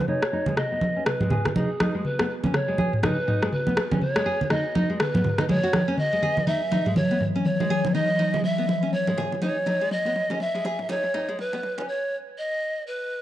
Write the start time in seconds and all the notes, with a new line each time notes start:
Already playing: F#4 B4
0.08 D#4 C#5, mid tom
0.23 cross-stick
0.33 D#4
0.46 G#1 G#3, low conga
0.57 D#5, cross-stick, mid tom
0.72 B3
0.81 high conga
0.96 B1 C#4
1.06 B4, cross-stick, mid tom
1.21 G#3, mid tom, high conga
1.30 D#1 G#4, mid tom, low conga
1.45 cross-stick, low conga
1.56 D#4 G#4, mid tom, high conga
1.80 D#4, cross-stick, high conga
1.95 G#3
2.04 G#1 B4, mid tom
2.19 B3, cross-stick
2.44 C#4, high conga, low conga
2.54 C#5, cross-stick, mid tom
2.68 G#3
2.78 G#4, high conga
2.93 mid tom
3.03 D#4 B4, cross-stick, mid tom, high conga, low conga
3.28 B1 D#4, mid tom
3.42 G#3, cross-stick
3.52 B1 B4, mid tom
3.67 B3, high conga
3.77 G#1, cross-stick
3.91 C#4, high conga, low conga
4.01 G#1 C#5, mid tom
4.16 G#3, cross-stick
4.26 G#4
4.40 G#1, low conga
4.50 D#4 D#5, cross-stick, mid tom
4.75 D#4, high conga
4.89 B1 G#3
5.00 B4, cross-stick, mid tom
5.14 B3, mid tom, high conga
5.24 mid tom, low conga
5.38 D#4, cross-stick, low conga
5.49 B1 G#3 C#5, mid tom, high conga
5.63 F#4
5.73 D#3, cross-stick, high conga
5.88 C#4
5.98 F#1 E3 F#3 D#5, mid tom
6.13 G#3
6.22 G#4, mid tom
6.37 high conga, low conga
6.47 D#4 E5, mid tom
6.71 D#4, mid tom, high conga
6.86 G#3, mid tom
6.96 C#5, mid tom, high conga, low conga
7.11 B3
7.21 B1, mid tom
7.36 C#4
7.45 B1 C#5, mid tom
7.60 G#3, high conga
7.70 F#1 G#4, mid tom
7.85 high conga, low conga
7.95 D#4 D#5, mid tom
8.19 D#4, mid tom
8.33 F#1 G#3, low conga
8.44 E5, mid tom
8.58 B3
8.69 mid tom, high conga
8.83 B1 C#4
8.93 C#5, mid tom
9.07 G#3, mid tom, high conga
9.17 C#2 G#4, mid tom, low conga
9.32 low conga
9.42 D#4 C#5, mid tom, high conga
9.66 D#4, mid tom, high conga
9.81 G#3
9.91 F#1 D#5, mid tom
10.05 B3, mid tom
10.16 mid tom
10.30 C#4, mid tom, high conga, low conga
10.40 E5, mid tom
10.55 G#3, mid tom
10.65 G#4, mid tom, high conga
10.79 mid tom
10.89 D#4 C#5, mid tom, high conga, low conga
11.04 mid tom
11.14 B1 D#4, mid tom
11.29 G#3, mid tom
11.39 B1 B4, mid tom
11.53 B3, mid tom, high conga
11.63 F#1, mid tom
11.78 C#4, mid tom, high conga, low conga
11.88 C#5
12.38 D#5
12.87 B4